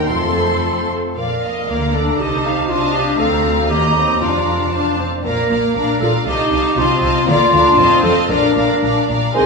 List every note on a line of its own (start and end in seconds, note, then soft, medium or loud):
0.08 0.95 F1 soft
0.08 0.95 F2 soft
0.08 0.89 A3 soft
0.08 0.94 C4 soft
0.08 0.91 F4 soft
0.08 0.90 A4 soft
0.08 0.96 A4 soft
0.08 0.88 C6 medium
1.16 1.64 A#1 soft
1.16 1.64 A#2 soft
1.16 1.96 A#4 medium
1.16 1.40 D5 soft
1.16 1.64 F5 soft
1.43 1.68 D#5 soft
1.68 2.19 D2 soft
1.68 2.19 D3 soft
1.68 1.92 A#3 soft
1.68 1.93 D5 soft
1.68 1.94 F5 soft
1.68 2.19 A#5 soft
1.94 2.19 D4 soft
1.94 2.19 A4 medium
1.94 2.19 D5 soft
2.19 3.17 C2 soft
2.19 3.17 C3 soft
2.19 2.69 D#4 soft
2.19 2.70 G4 medium
2.19 2.44 D#5 soft
2.19 2.67 A5 soft
2.46 2.69 F5 soft
2.69 3.18 D4 medium
2.69 2.93 F4 medium
2.69 3.19 D#5 soft
2.69 3.18 F5 soft
2.69 3.18 A5 soft
2.93 3.21 G4 medium
3.17 3.66 D2 medium
3.17 3.70 C4 medium
3.17 3.71 A4 medium
3.17 3.66 F5 medium
3.17 3.65 A#5 soft
3.67 4.21 D#2 medium
3.67 4.21 D#2 soft
3.67 3.95 A#3 soft
3.67 4.20 G4 medium
3.67 4.21 D#5 soft
3.67 4.17 A#5 soft
3.67 4.21 A#5 soft
3.95 4.21 C4 soft
4.18 5.02 F1 soft
4.18 5.02 F2 soft
4.18 4.68 D4 soft
4.18 4.97 F4 soft
4.18 4.73 D5 soft
4.18 4.73 F5 soft
4.18 4.71 A#5 soft
4.71 4.98 D4 soft
4.71 5.04 C5 soft
4.71 5.04 F5 soft
4.71 5.03 A5 soft
4.99 5.25 C4 soft
5.24 5.32 A#1 soft
5.24 5.32 A#2 soft
5.24 5.72 A#3 soft
5.24 5.97 A#4 medium
5.24 5.49 D5 soft
5.24 5.49 F5 soft
5.24 5.48 A#5 soft
5.49 5.58 A#1 soft
5.49 5.57 A#2 soft
5.49 5.75 D5 soft
5.49 5.75 F5 soft
5.49 5.74 A#5 soft
5.74 5.83 A#1 soft
5.74 5.82 A#2 soft
5.74 6.01 D4 soft
5.74 5.99 D5 soft
5.74 5.99 F5 soft
5.74 6.00 A#5 soft
6.00 6.09 A#1 soft
6.00 6.08 A#2 soft
6.00 6.10 F4 soft
6.00 6.12 A4 medium
6.00 6.26 D5 soft
6.00 6.25 F5 soft
6.00 6.26 A#5 soft
6.26 6.34 C2 medium
6.26 6.34 C3 medium
6.26 6.76 D#4 soft
6.26 6.79 G4 medium
6.26 6.51 D#5 soft
6.26 6.50 F5 soft
6.26 6.52 A5 soft
6.51 6.60 C2 soft
6.51 6.59 C3 soft
6.51 6.76 D#5 soft
6.51 6.76 F5 soft
6.51 6.77 A5 soft
6.76 6.84 C2 medium
6.76 6.84 C3 medium
6.76 7.27 C4 medium
6.76 7.27 F4 medium
6.76 7.01 D#5 soft
6.76 7.00 F5 soft
6.76 7.00 A5 soft
7.01 7.09 C2 medium
7.01 7.09 C3 medium
7.01 7.26 D#5 soft
7.01 7.26 F5 medium
7.01 7.26 A5 soft
7.27 7.35 D2 medium
7.27 7.35 D3 medium
7.27 7.52 A#3 medium
7.27 8.02 F4 medium
7.27 7.51 D5 medium
7.27 7.51 F5 medium
7.27 7.49 A#5 medium
7.50 7.60 D2 medium
7.50 7.59 D3 medium
7.50 7.77 D4 medium
7.50 7.77 D5 soft
7.50 7.77 F5 soft
7.50 7.76 A#5 medium
7.76 7.85 F1 medium
7.76 7.84 F2 medium
7.76 8.29 C4 medium
7.76 8.03 D#5 medium
7.76 8.03 F5 medium
7.76 8.00 A5 soft
8.02 8.11 F1 medium
8.02 8.11 F2 medium
8.02 8.15 A4 medium
8.02 8.30 D#5 soft
8.02 8.29 F5 soft
8.02 8.28 A5 soft
8.28 8.37 A#1 medium
8.28 8.37 A#2 medium
8.28 9.08 D4 soft
8.28 9.07 A#4 medium
8.28 8.56 D5 soft
8.28 8.56 F5 soft
8.28 8.55 A#5 medium
8.55 8.64 A#1 soft
8.55 8.63 A#2 soft
8.55 8.82 D5 soft
8.55 8.82 F5 soft
8.55 8.81 A#5 soft
8.81 8.91 A#1 medium
8.81 8.89 A#2 soft
8.81 9.08 D5 soft
8.81 9.08 F5 soft
8.81 9.08 A#5 soft
9.08 9.17 A#1 soft
9.08 9.16 A#2 soft
9.08 9.35 D5 soft
9.08 9.35 F5 soft
9.08 9.35 A#5 soft
9.34 9.46 C2 medium
9.34 9.46 C3 medium
9.34 9.46 D#3 medium
9.34 9.46 C4 medium
9.34 9.46 D#4 medium
9.34 9.46 G#4 medium
9.34 9.46 C5 medium
9.34 9.46 D#5 medium
9.34 9.46 G#5 medium
9.34 9.46 C6 medium